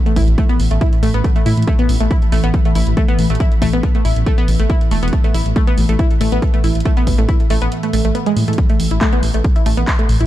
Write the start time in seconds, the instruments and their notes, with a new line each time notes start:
Already playing: synth drone A2 E3
0.06 synth arpeggio sound A3, closed hi-hat
0.16 detuned saw bass A1, synth arpeggio sound E4, kick, open hi-hat
0.28 detuned saw bass A1, closed hi-hat
0.38 synth arpeggio sound A3, kick, closed hi-hat
0.49 synth arpeggio sound B3, closed hi-hat
0.60 detuned saw bass A1, open hi-hat
0.71 detuned saw bass A1, synth arpeggio sound A3, closed hi-hat
0.81 synth arpeggio sound E4, kick, closed hi-hat
0.93 closed hi-hat
1.03 detuned saw bass A1, synth arpeggio sound A3, open hi-hat
1.14 detuned saw bass A1, synth arpeggio sound B3, closed hi-hat
1.24 kick, closed hi-hat
1.36 synth arpeggio sound A3, closed hi-hat
1.46 detuned saw bass A2, synth arpeggio sound E4, open hi-hat
1.57 detuned saw bass A2, closed hi-hat
1.62 closed hi-hat
1.67 synth arpeggio sound A3, kick, closed hi-hat
1.79 synth arpeggio sound B3, closed hi-hat
1.89 detuned saw bass A1, open hi-hat
2.00 detuned saw bass A1, synth arpeggio sound A3, closed hi-hat
2.11 synth arpeggio sound E4, kick, closed hi-hat
2.22 closed hi-hat
2.32 detuned saw bass A1, synth arpeggio sound A3, open hi-hat
2.44 detuned saw bass A1, synth arpeggio sound B3, closed hi-hat
2.54 kick, closed hi-hat
2.65 synth arpeggio sound A3, closed hi-hat
2.75 detuned saw bass A1, synth arpeggio sound E4, open hi-hat
2.87 detuned saw bass A1, closed hi-hat
2.97 synth arpeggio sound A3, kick, closed hi-hat
3.08 synth arpeggio sound B3, closed hi-hat
3.19 detuned saw bass A1, open hi-hat
3.30 detuned saw bass A1, synth arpeggio sound A3, closed hi-hat
3.35 closed hi-hat
3.40 synth arpeggio sound E4, kick, closed hi-hat
3.52 closed hi-hat
3.62 detuned saw bass A1, synth arpeggio sound A3, kick, open hi-hat
3.73 detuned saw bass A1, synth arpeggio sound B3, closed hi-hat
3.83 kick, closed hi-hat
3.95 synth arpeggio sound A3, closed hi-hat
4.05 detuned saw bass A1, synth arpeggio sound E4, open hi-hat
4.16 detuned saw bass A1, closed hi-hat
4.26 synth arpeggio sound A3, kick, closed hi-hat
4.38 synth arpeggio sound B3, closed hi-hat
4.48 detuned saw bass A1, open hi-hat
4.59 detuned saw bass A1, synth arpeggio sound A3, closed hi-hat
4.70 synth arpeggio sound E4, kick, closed hi-hat
4.81 closed hi-hat
4.91 detuned saw bass E1, synth arpeggio sound A3, open hi-hat
5.03 detuned saw bass E1, synth arpeggio sound B3, closed hi-hat
5.08 closed hi-hat
5.13 kick, closed hi-hat
5.24 synth arpeggio sound A3, closed hi-hat
5.34 detuned saw bass A1, synth arpeggio sound E4, open hi-hat
5.46 detuned saw bass A1, closed hi-hat
5.56 synth arpeggio sound A3, kick, closed hi-hat
5.67 synth arpeggio sound B3, closed hi-hat
5.78 detuned saw bass A1, open hi-hat
5.89 detuned saw bass A1, synth arpeggio sound A3, closed hi-hat
5.99 synth arpeggio sound E4, kick, closed hi-hat
6.11 closed hi-hat
6.21 detuned saw bass A1, synth arpeggio sound A3, open hi-hat
6.32 detuned saw bass A1, synth arpeggio sound B3, closed hi-hat
6.42 kick, closed hi-hat
6.54 synth arpeggio sound A3, closed hi-hat
6.64 detuned saw bass A1, synth arpeggio sound E4, open hi-hat
6.75 detuned saw bass A1, closed hi-hat
6.80 closed hi-hat
6.85 synth arpeggio sound A3, kick, closed hi-hat
6.97 synth arpeggio sound B3, closed hi-hat
7.07 detuned saw bass A1, kick, open hi-hat
7.18 detuned saw bass A1, synth arpeggio sound A3, closed hi-hat
7.29 synth arpeggio sound E4, kick, closed hi-hat
7.40 closed hi-hat
7.50 detuned saw bass A1, synth arpeggio sound A3, open hi-hat
7.62 detuned saw bass A1, synth arpeggio sound B3, closed hi-hat
7.72 closed hi-hat
7.83 synth arpeggio sound A3, closed hi-hat
7.93 detuned saw bass A1, synth arpeggio sound A3, open hi-hat
8.05 detuned saw bass A1, synth arpeggio sound A3, closed hi-hat
8.15 synth arpeggio sound B3, closed hi-hat
8.26 synth arpeggio sound G#3, closed hi-hat
8.37 detuned saw bass A2, open hi-hat
8.48 detuned saw bass A2, synth arpeggio sound A3, closed hi-hat
8.53 closed hi-hat
8.58 synth drone A2 E3, kick, closed hi-hat
8.70 synth arpeggio sound A3, closed hi-hat
8.80 detuned saw bass A1, open hi-hat
8.91 detuned saw bass A1, synth arpeggio sound E4, closed hi-hat
9.01 synth arpeggio sound A3, kick, clap, closed hi-hat
9.13 synth arpeggio sound B3, closed hi-hat
9.23 detuned saw bass A1, open hi-hat
9.34 detuned saw bass A1, synth arpeggio sound A3, closed hi-hat
9.44 kick, closed hi-hat
9.56 synth arpeggio sound E4, closed hi-hat
9.66 detuned saw bass A1, synth arpeggio sound A3, open hi-hat
9.77 detuned saw bass A1, synth arpeggio sound B3, closed hi-hat
9.88 kick, clap, closed hi-hat
9.99 synth arpeggio sound A3, closed hi-hat
10.09 detuned saw bass A1, open hi-hat
10.21 detuned saw bass A1, synth arpeggio sound E4, closed hi-hat